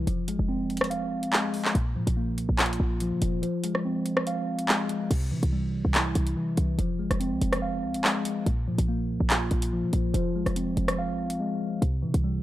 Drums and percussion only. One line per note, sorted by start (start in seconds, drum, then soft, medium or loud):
0.07 closed hi-hat medium
0.28 closed hi-hat medium
0.70 closed hi-hat soft
0.77 closed hi-hat medium
0.81 cross-stick loud
0.81 closed hi-hat medium
0.91 closed hi-hat medium
1.23 closed hi-hat medium
1.33 clap loud
1.54 open hi-hat medium
1.65 clap medium
1.75 closed hi-hat medium
2.07 closed hi-hat medium
2.38 closed hi-hat medium
2.59 clap loud
2.59 closed hi-hat medium
2.66 closed hi-hat medium
2.73 closed hi-hat medium
3.00 closed hi-hat medium
3.22 closed hi-hat medium
3.43 closed hi-hat medium
3.64 closed hi-hat medium
3.75 cross-stick medium
4.06 closed hi-hat medium
4.17 cross-stick loud
4.27 closed hi-hat medium
4.59 closed hi-hat medium
4.69 clap loud
4.89 closed hi-hat medium
5.11 closed hi-hat medium
5.11 crash loud
5.43 closed hi-hat medium
5.95 clap loud
5.95 closed hi-hat medium
6.15 closed hi-hat medium
6.27 closed hi-hat medium
6.57 closed hi-hat medium
6.79 closed hi-hat medium
7.11 cross-stick medium
7.11 closed hi-hat medium
7.21 closed hi-hat medium
7.41 closed hi-hat medium
7.53 cross-stick loud
7.53 closed hi-hat medium
7.94 closed hi-hat medium
8.04 clap loud
8.25 closed hi-hat medium
8.46 closed hi-hat medium
8.79 closed hi-hat medium
9.30 clap loud
9.30 closed hi-hat medium
9.51 closed hi-hat medium
9.62 closed hi-hat medium
9.93 closed hi-hat medium
10.14 closed hi-hat medium
10.46 cross-stick medium
10.46 closed hi-hat medium
10.56 closed hi-hat medium
10.77 closed hi-hat medium
10.88 cross-stick loud
10.88 closed hi-hat medium
11.30 closed hi-hat medium
11.82 closed hi-hat medium
12.14 closed hi-hat medium